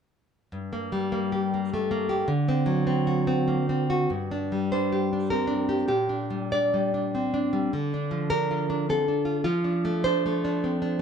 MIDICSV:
0, 0, Header, 1, 2, 480
1, 0, Start_track
1, 0, Key_signature, -2, "minor"
1, 0, Tempo, 603015
1, 413, Time_signature, 3, 2, 24, 8
1, 891, Tempo, 574163
1, 2331, Tempo, 610376
1, 5691, Tempo, 582524
1, 8907, End_track
2, 0, Start_track
2, 0, Title_t, "Nylon-string guitar"
2, 0, Program_c, 0, 24
2, 416, Note_on_c, 0, 43, 47
2, 579, Note_on_c, 0, 58, 37
2, 735, Note_on_c, 0, 55, 39
2, 883, Note_off_c, 0, 58, 0
2, 892, Note_on_c, 0, 58, 43
2, 1061, Note_on_c, 0, 67, 42
2, 1231, Note_off_c, 0, 58, 0
2, 1241, Note_on_c, 0, 58, 45
2, 1403, Note_off_c, 0, 55, 0
2, 1407, Note_on_c, 0, 57, 40
2, 1542, Note_off_c, 0, 58, 0
2, 1552, Note_on_c, 0, 58, 46
2, 1695, Note_off_c, 0, 67, 0
2, 1705, Note_on_c, 0, 67, 47
2, 1818, Note_off_c, 0, 43, 0
2, 1855, Note_off_c, 0, 67, 0
2, 1858, Note_off_c, 0, 58, 0
2, 1859, Note_on_c, 0, 50, 68
2, 1865, Note_off_c, 0, 57, 0
2, 2032, Note_on_c, 0, 60, 53
2, 2179, Note_on_c, 0, 54, 54
2, 2342, Note_off_c, 0, 60, 0
2, 2351, Note_on_c, 0, 60, 54
2, 2511, Note_on_c, 0, 66, 51
2, 2660, Note_off_c, 0, 60, 0
2, 2670, Note_on_c, 0, 60, 50
2, 2830, Note_on_c, 0, 58, 40
2, 2904, Note_off_c, 0, 54, 0
2, 2990, Note_off_c, 0, 60, 0
2, 2999, Note_on_c, 0, 60, 47
2, 3153, Note_off_c, 0, 66, 0
2, 3162, Note_on_c, 0, 66, 42
2, 3283, Note_off_c, 0, 50, 0
2, 3316, Note_off_c, 0, 66, 0
2, 3317, Note_off_c, 0, 58, 0
2, 3319, Note_off_c, 0, 60, 0
2, 3320, Note_on_c, 0, 43, 47
2, 3489, Note_on_c, 0, 62, 39
2, 3651, Note_on_c, 0, 55, 37
2, 3805, Note_off_c, 0, 62, 0
2, 3807, Note_on_c, 0, 72, 64
2, 3815, Note_on_c, 0, 62, 41
2, 3968, Note_on_c, 0, 67, 37
2, 4120, Note_off_c, 0, 62, 0
2, 4129, Note_on_c, 0, 62, 37
2, 4240, Note_off_c, 0, 72, 0
2, 4266, Note_on_c, 0, 70, 52
2, 4277, Note_off_c, 0, 55, 0
2, 4280, Note_on_c, 0, 60, 34
2, 4391, Note_off_c, 0, 62, 0
2, 4401, Note_on_c, 0, 62, 40
2, 4560, Note_off_c, 0, 67, 0
2, 4569, Note_on_c, 0, 67, 40
2, 4686, Note_off_c, 0, 43, 0
2, 4704, Note_off_c, 0, 70, 0
2, 4712, Note_off_c, 0, 67, 0
2, 4713, Note_off_c, 0, 62, 0
2, 4718, Note_on_c, 0, 46, 46
2, 4723, Note_on_c, 0, 67, 60
2, 4729, Note_off_c, 0, 60, 0
2, 4887, Note_on_c, 0, 62, 37
2, 5054, Note_on_c, 0, 55, 39
2, 5199, Note_off_c, 0, 67, 0
2, 5221, Note_off_c, 0, 62, 0
2, 5223, Note_on_c, 0, 74, 62
2, 5230, Note_on_c, 0, 62, 39
2, 5385, Note_off_c, 0, 55, 0
2, 5394, Note_on_c, 0, 55, 38
2, 5545, Note_off_c, 0, 62, 0
2, 5554, Note_on_c, 0, 62, 43
2, 5717, Note_on_c, 0, 60, 33
2, 5865, Note_off_c, 0, 62, 0
2, 5875, Note_on_c, 0, 62, 43
2, 5908, Note_off_c, 0, 74, 0
2, 6023, Note_off_c, 0, 55, 0
2, 6033, Note_on_c, 0, 55, 39
2, 6146, Note_off_c, 0, 46, 0
2, 6185, Note_off_c, 0, 55, 0
2, 6187, Note_off_c, 0, 62, 0
2, 6189, Note_off_c, 0, 60, 0
2, 6200, Note_on_c, 0, 50, 52
2, 6369, Note_on_c, 0, 62, 41
2, 6511, Note_on_c, 0, 53, 42
2, 6668, Note_off_c, 0, 62, 0
2, 6668, Note_on_c, 0, 70, 77
2, 6678, Note_on_c, 0, 62, 48
2, 6839, Note_on_c, 0, 65, 46
2, 6986, Note_off_c, 0, 62, 0
2, 6996, Note_on_c, 0, 62, 45
2, 7125, Note_off_c, 0, 70, 0
2, 7154, Note_off_c, 0, 62, 0
2, 7157, Note_on_c, 0, 60, 39
2, 7161, Note_on_c, 0, 69, 55
2, 7226, Note_off_c, 0, 53, 0
2, 7310, Note_off_c, 0, 60, 0
2, 7313, Note_on_c, 0, 62, 45
2, 7443, Note_off_c, 0, 65, 0
2, 7453, Note_on_c, 0, 65, 45
2, 7592, Note_off_c, 0, 50, 0
2, 7600, Note_off_c, 0, 65, 0
2, 7605, Note_off_c, 0, 69, 0
2, 7610, Note_on_c, 0, 65, 69
2, 7614, Note_on_c, 0, 53, 56
2, 7620, Note_off_c, 0, 62, 0
2, 7775, Note_on_c, 0, 62, 43
2, 7943, Note_on_c, 0, 57, 48
2, 8088, Note_off_c, 0, 65, 0
2, 8102, Note_on_c, 0, 72, 74
2, 8106, Note_off_c, 0, 62, 0
2, 8116, Note_on_c, 0, 62, 52
2, 8271, Note_off_c, 0, 57, 0
2, 8281, Note_on_c, 0, 57, 47
2, 8426, Note_off_c, 0, 62, 0
2, 8436, Note_on_c, 0, 62, 52
2, 8595, Note_on_c, 0, 60, 41
2, 8734, Note_off_c, 0, 62, 0
2, 8744, Note_on_c, 0, 62, 48
2, 8784, Note_off_c, 0, 72, 0
2, 8877, Note_off_c, 0, 57, 0
2, 8907, Note_off_c, 0, 53, 0
2, 8907, Note_off_c, 0, 60, 0
2, 8907, Note_off_c, 0, 62, 0
2, 8907, End_track
0, 0, End_of_file